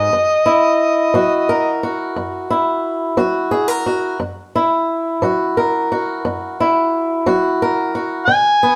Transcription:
Already playing: steel-string acoustic guitar G#2, harmonica D#5
0.13 steel-string acoustic guitar F#2
0.46 steel-string acoustic guitar E4
1.14 steel-string acoustic guitar F#3 F#4
1.49 steel-string acoustic guitar A#4
1.83 steel-string acoustic guitar F#4
2.16 steel-string acoustic guitar F#2
2.50 steel-string acoustic guitar E4
3.17 steel-string acoustic guitar F#3 F#4
3.51 steel-string acoustic guitar G#4
3.68 steel-string acoustic guitar A#4
3.86 steel-string acoustic guitar F#4
4.20 steel-string acoustic guitar F#2
4.55 steel-string acoustic guitar E4
5.22 steel-string acoustic guitar F#3 F#4
5.57 steel-string acoustic guitar A#4
5.92 steel-string acoustic guitar F#4
6.25 steel-string acoustic guitar F#2
6.60 steel-string acoustic guitar E4
7.26 steel-string acoustic guitar F#3 F#4
7.62 steel-string acoustic guitar A#4
7.95 steel-string acoustic guitar F#4
8.26 steel-string acoustic guitar C#3, harmonica G#5
8.63 steel-string acoustic guitar B3

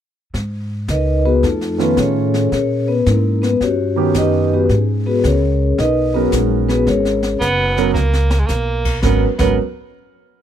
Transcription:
0.34 upright bass G#2, brush sweep, kick, snare
0.88 upright bass C#2, vibraphone D#4 A#4 B4 D#5, kick, snare, hi-hat pedal
1.25 vibraphone B3 F#4 G#4 B4
1.43 upright bass F2, vibraphone A3 D#4 F4 A4, brush sweep, kick, snare
1.61 snare
1.78 grand piano D#3 A3 C#4 F4, vibraphone B3 B4, snare
1.97 upright bass A2, vibraphone C#4 G#4 A4 C#5, kick, snare, hi-hat pedal
2.34 snare
2.52 upright bass A#2, vibraphone C#4 G#4 A#4 C#5, brush sweep, kick, snare
2.88 vibraphone B3 B4
3.06 upright bass G#2, vibraphone A#3 C#4 E4 A#4, snare, hi-hat pedal
3.42 vibraphone B3 B4, snare
3.61 upright bass G2, vibraphone C#4 F#4 G4 C#5, brush sweep, kick, snare
3.96 grand piano D#3 B3 C#4 G4
4.14 upright bass F#2, vibraphone D#4 G4 B4 D#5, kick, snare, hi-hat pedal
4.53 vibraphone B3 F#4 G4 B4
4.69 upright bass G#2, vibraphone G#3 C#4 D#4 G#4, brush sweep, kick, snare
5.06 vibraphone B3 F#4 G#4 B4
5.24 upright bass C#2, vibraphone C#4 G#4 A#4 C#5, snare, hi-hat pedal
5.78 upright bass B1, vibraphone D#4 A#4 B4 D#5, brush sweep, kick, snare
6.14 grand piano F#3 B3 C#4 A#4, vibraphone B3 F#4 G#4 B4
6.32 upright bass A#1, vibraphone G#3 C#4 D#4 G#4, kick, snare, hi-hat pedal
6.69 vibraphone B3 F#4 G#4 B4, snare
6.87 upright bass G#1, vibraphone C#4 G#4 A#4 C#5, brush sweep, kick, snare
7.05 snare
7.23 snare
7.40 upright bass F#1, baritone saxophone B3, kick, snare, hi-hat pedal
7.77 grand piano F#3 B3 C#4 A#4, snare
7.93 upright bass C#2, baritone saxophone A#3, snare
8.13 snare
8.30 snare
8.39 baritone saxophone G#3
8.46 upright bass B1, baritone saxophone A#3, snare, hi-hat pedal
8.85 kick, crash
9.02 upright bass G#1, grand piano F#3 B3 C#4 A#4, baritone saxophone B3, vibraphone B4, kick, snare
9.38 upright bass G#1, grand piano F#3 B3 C#4 A#4, baritone saxophone B3, vibraphone B4, kick, snare, crash

